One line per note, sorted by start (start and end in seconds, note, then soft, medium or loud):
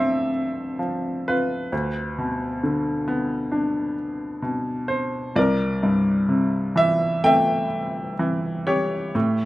0.00 1.70 D2 soft
0.00 0.30 A2 soft
0.00 0.77 D3 soft
0.00 0.78 F3 soft
0.00 1.69 C4 soft
0.00 1.70 C5 soft
0.00 1.74 D5 medium
0.00 1.31 E5 medium
0.79 1.69 F3 soft
1.28 3.04 F4 soft
1.28 2.60 B4 medium
1.72 5.33 D2 soft
2.18 3.93 B2 soft
2.63 4.39 D3 soft
3.08 4.86 B3 soft
3.52 5.33 D4 soft
4.42 5.34 B2 soft
4.88 5.37 C5 medium
5.36 9.10 C2 medium
5.36 7.20 A#4 medium
5.36 6.80 D5 medium
5.83 7.66 G2 soft
6.29 8.14 C3 soft
6.76 8.18 E3 soft
6.76 7.24 E5 medium
7.24 9.11 A3 medium
7.24 9.12 E5 medium
7.24 8.71 G5 medium
8.19 9.12 E3 soft
8.67 9.45 G4 medium
8.67 9.45 C#5 medium
9.15 9.45 A2 medium